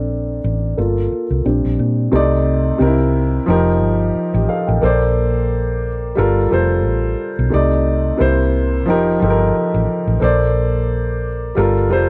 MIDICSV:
0, 0, Header, 1, 4, 480
1, 0, Start_track
1, 0, Tempo, 674157
1, 1503, Time_signature, 4, 2, 24, 8
1, 8610, End_track
2, 0, Start_track
2, 0, Title_t, "Upright piano"
2, 0, Program_c, 0, 0
2, 0, Control_c, 0, 64, 127
2, 0, Note_on_c, 0, 60, 45
2, 0, Note_on_c, 0, 62, 60
2, 0, Note_on_c, 0, 69, 48
2, 0, Note_on_c, 0, 70, 70
2, 275, Note_off_c, 0, 60, 0
2, 275, Note_off_c, 0, 69, 0
2, 278, Note_off_c, 0, 62, 0
2, 552, Note_on_c, 0, 69, 49
2, 554, Control_c, 0, 64, 0
2, 555, Note_on_c, 0, 58, 49
2, 559, Note_on_c, 0, 65, 55
2, 676, Control_c, 0, 64, 127
2, 878, Note_off_c, 0, 69, 0
2, 880, Note_off_c, 0, 58, 0
2, 882, Note_off_c, 0, 65, 0
2, 996, Note_off_c, 0, 70, 0
2, 1030, Note_on_c, 0, 55, 46
2, 1032, Control_c, 0, 64, 0
2, 1036, Note_on_c, 0, 60, 45
2, 1039, Note_on_c, 0, 62, 48
2, 1156, Control_c, 0, 64, 127
2, 1482, Note_off_c, 0, 55, 0
2, 1486, Note_off_c, 0, 60, 0
2, 1487, Note_off_c, 0, 62, 0
2, 1507, Note_on_c, 0, 48, 91
2, 1513, Control_c, 0, 64, 0
2, 1515, Note_on_c, 0, 57, 79
2, 1526, Note_on_c, 0, 63, 85
2, 1534, Note_on_c, 0, 74, 97
2, 1654, Control_c, 0, 64, 127
2, 1971, Note_off_c, 0, 48, 0
2, 1981, Note_on_c, 0, 48, 89
2, 1988, Note_off_c, 0, 63, 0
2, 1988, Note_on_c, 0, 60, 81
2, 1989, Note_off_c, 0, 57, 0
2, 1991, Control_c, 0, 64, 0
2, 1999, Note_off_c, 0, 74, 0
2, 1999, Note_on_c, 0, 63, 66
2, 2008, Note_on_c, 0, 70, 95
2, 2043, Note_off_c, 0, 63, 0
2, 2043, Note_on_c, 0, 64, 87
2, 2100, Control_c, 0, 64, 127
2, 2378, Note_off_c, 0, 48, 0
2, 2381, Note_off_c, 0, 60, 0
2, 2391, Note_off_c, 0, 70, 0
2, 2409, Note_off_c, 0, 64, 0
2, 2464, Note_on_c, 0, 53, 89
2, 2473, Control_c, 0, 64, 0
2, 2473, Note_on_c, 0, 63, 81
2, 2483, Note_on_c, 0, 67, 81
2, 2491, Note_on_c, 0, 70, 101
2, 2615, Control_c, 0, 64, 127
2, 2661, Note_off_c, 0, 53, 0
2, 2666, Note_off_c, 0, 63, 0
2, 2671, Note_off_c, 0, 67, 0
2, 2675, Note_off_c, 0, 70, 0
2, 3086, Note_on_c, 0, 75, 65
2, 3093, Note_on_c, 0, 67, 54
2, 3182, Note_off_c, 0, 75, 0
2, 3186, Note_off_c, 0, 67, 0
2, 3195, Note_on_c, 0, 77, 70
2, 3197, Note_on_c, 0, 69, 58
2, 3317, Note_off_c, 0, 77, 0
2, 3318, Note_off_c, 0, 69, 0
2, 3328, Note_on_c, 0, 79, 62
2, 3330, Note_on_c, 0, 70, 51
2, 3428, Note_on_c, 0, 58, 88
2, 3431, Control_c, 0, 64, 0
2, 3437, Note_on_c, 0, 69, 75
2, 3448, Note_on_c, 0, 72, 86
2, 3457, Note_on_c, 0, 74, 93
2, 3543, Control_c, 0, 64, 127
2, 3551, Note_off_c, 0, 79, 0
2, 3552, Note_off_c, 0, 70, 0
2, 4173, Note_off_c, 0, 58, 0
2, 4178, Note_off_c, 0, 69, 0
2, 4183, Note_off_c, 0, 72, 0
2, 4188, Note_off_c, 0, 74, 0
2, 4381, Note_on_c, 0, 55, 95
2, 4392, Control_c, 0, 64, 0
2, 4393, Note_on_c, 0, 65, 91
2, 4401, Note_on_c, 0, 69, 85
2, 4408, Note_on_c, 0, 70, 96
2, 4532, Control_c, 0, 64, 127
2, 4580, Note_off_c, 0, 55, 0
2, 4586, Note_off_c, 0, 65, 0
2, 4590, Note_off_c, 0, 69, 0
2, 4593, Note_off_c, 0, 70, 0
2, 4621, Note_on_c, 0, 55, 85
2, 4633, Note_on_c, 0, 65, 77
2, 4642, Note_on_c, 0, 69, 82
2, 4652, Note_on_c, 0, 72, 92
2, 5190, Note_off_c, 0, 55, 0
2, 5196, Note_off_c, 0, 65, 0
2, 5201, Note_off_c, 0, 69, 0
2, 5206, Note_off_c, 0, 72, 0
2, 5341, Note_on_c, 0, 48, 86
2, 5350, Note_on_c, 0, 57, 76
2, 5351, Control_c, 0, 64, 0
2, 5360, Note_on_c, 0, 63, 83
2, 5368, Note_on_c, 0, 74, 100
2, 5463, Control_c, 0, 64, 127
2, 5810, Note_off_c, 0, 48, 0
2, 5821, Note_on_c, 0, 48, 92
2, 5827, Note_off_c, 0, 57, 0
2, 5828, Note_on_c, 0, 58, 83
2, 5831, Note_off_c, 0, 63, 0
2, 5833, Control_c, 0, 64, 0
2, 5836, Note_off_c, 0, 74, 0
2, 5837, Note_on_c, 0, 64, 82
2, 5848, Note_on_c, 0, 72, 99
2, 5973, Control_c, 0, 64, 127
2, 6217, Note_off_c, 0, 48, 0
2, 6221, Note_off_c, 0, 58, 0
2, 6226, Note_off_c, 0, 64, 0
2, 6231, Note_off_c, 0, 72, 0
2, 6306, Note_on_c, 0, 53, 89
2, 6311, Control_c, 0, 64, 0
2, 6319, Note_on_c, 0, 63, 85
2, 6328, Note_on_c, 0, 67, 86
2, 6336, Note_on_c, 0, 70, 102
2, 6457, Control_c, 0, 64, 127
2, 6502, Note_off_c, 0, 53, 0
2, 6509, Note_off_c, 0, 63, 0
2, 6513, Note_off_c, 0, 67, 0
2, 6517, Note_off_c, 0, 70, 0
2, 6549, Note_on_c, 0, 53, 84
2, 6560, Note_on_c, 0, 63, 77
2, 6564, Note_on_c, 0, 67, 76
2, 6578, Note_on_c, 0, 69, 74
2, 6612, Note_off_c, 0, 69, 0
2, 6623, Note_on_c, 0, 70, 96
2, 7114, Note_off_c, 0, 53, 0
2, 7119, Note_off_c, 0, 63, 0
2, 7122, Note_off_c, 0, 67, 0
2, 7151, Note_off_c, 0, 70, 0
2, 7261, Note_on_c, 0, 58, 89
2, 7271, Control_c, 0, 64, 0
2, 7272, Note_on_c, 0, 69, 76
2, 7279, Note_on_c, 0, 72, 85
2, 7288, Note_on_c, 0, 74, 97
2, 7406, Control_c, 0, 64, 127
2, 8010, Note_off_c, 0, 58, 0
2, 8015, Note_off_c, 0, 69, 0
2, 8019, Note_off_c, 0, 72, 0
2, 8023, Note_off_c, 0, 74, 0
2, 8224, Note_on_c, 0, 55, 95
2, 8233, Control_c, 0, 64, 0
2, 8235, Note_on_c, 0, 65, 86
2, 8243, Note_on_c, 0, 69, 84
2, 8252, Note_on_c, 0, 70, 100
2, 8348, Control_c, 0, 64, 127
2, 8421, Note_off_c, 0, 55, 0
2, 8427, Note_off_c, 0, 65, 0
2, 8431, Note_off_c, 0, 69, 0
2, 8435, Note_off_c, 0, 70, 0
2, 8464, Note_on_c, 0, 55, 83
2, 8474, Note_on_c, 0, 65, 83
2, 8482, Note_on_c, 0, 69, 80
2, 8491, Note_on_c, 0, 72, 93
2, 8610, Note_off_c, 0, 55, 0
2, 8610, Note_off_c, 0, 65, 0
2, 8610, Note_off_c, 0, 69, 0
2, 8610, Note_off_c, 0, 72, 0
2, 8610, End_track
3, 0, Start_track
3, 0, Title_t, "Fingered electric bass"
3, 0, Program_c, 1, 33
3, 0, Note_on_c, 1, 34, 87
3, 280, Note_off_c, 1, 34, 0
3, 315, Note_on_c, 1, 33, 81
3, 519, Note_off_c, 1, 33, 0
3, 557, Note_on_c, 1, 31, 87
3, 760, Note_off_c, 1, 31, 0
3, 929, Note_on_c, 1, 36, 69
3, 1016, Note_off_c, 1, 36, 0
3, 1037, Note_on_c, 1, 34, 83
3, 1148, Note_off_c, 1, 34, 0
3, 1174, Note_on_c, 1, 34, 76
3, 1259, Note_off_c, 1, 34, 0
3, 1275, Note_on_c, 1, 46, 79
3, 1479, Note_off_c, 1, 46, 0
3, 1513, Note_on_c, 1, 36, 97
3, 1927, Note_off_c, 1, 36, 0
3, 1997, Note_on_c, 1, 36, 94
3, 2409, Note_off_c, 1, 36, 0
3, 2477, Note_on_c, 1, 29, 95
3, 2718, Note_off_c, 1, 29, 0
3, 2718, Note_on_c, 1, 31, 80
3, 2921, Note_off_c, 1, 31, 0
3, 3092, Note_on_c, 1, 33, 89
3, 3177, Note_off_c, 1, 33, 0
3, 3335, Note_on_c, 1, 33, 87
3, 3420, Note_off_c, 1, 33, 0
3, 3439, Note_on_c, 1, 34, 102
3, 4363, Note_off_c, 1, 34, 0
3, 4402, Note_on_c, 1, 31, 103
3, 4603, Note_off_c, 1, 31, 0
3, 4643, Note_on_c, 1, 29, 88
3, 4883, Note_off_c, 1, 29, 0
3, 4883, Note_on_c, 1, 33, 92
3, 5084, Note_off_c, 1, 33, 0
3, 5260, Note_on_c, 1, 35, 86
3, 5342, Note_off_c, 1, 35, 0
3, 5366, Note_on_c, 1, 36, 91
3, 5774, Note_off_c, 1, 36, 0
3, 5841, Note_on_c, 1, 36, 96
3, 6326, Note_off_c, 1, 36, 0
3, 6326, Note_on_c, 1, 29, 98
3, 6525, Note_off_c, 1, 29, 0
3, 6566, Note_on_c, 1, 31, 96
3, 6765, Note_off_c, 1, 31, 0
3, 6937, Note_on_c, 1, 33, 81
3, 7020, Note_off_c, 1, 33, 0
3, 7173, Note_on_c, 1, 33, 75
3, 7258, Note_off_c, 1, 33, 0
3, 7277, Note_on_c, 1, 34, 106
3, 8201, Note_off_c, 1, 34, 0
3, 8241, Note_on_c, 1, 31, 100
3, 8475, Note_off_c, 1, 31, 0
3, 8475, Note_on_c, 1, 29, 89
3, 8610, Note_off_c, 1, 29, 0
3, 8610, End_track
4, 0, Start_track
4, 0, Title_t, "Muted fingered electric bass strokes"
4, 799, Note_on_c, 9, 29, 41
4, 870, Note_off_c, 9, 29, 0
4, 2957, Note_on_c, 9, 29, 45
4, 3028, Note_off_c, 9, 29, 0
4, 6801, Note_on_c, 9, 29, 44
4, 6872, Note_off_c, 9, 29, 0
4, 8610, End_track
0, 0, End_of_file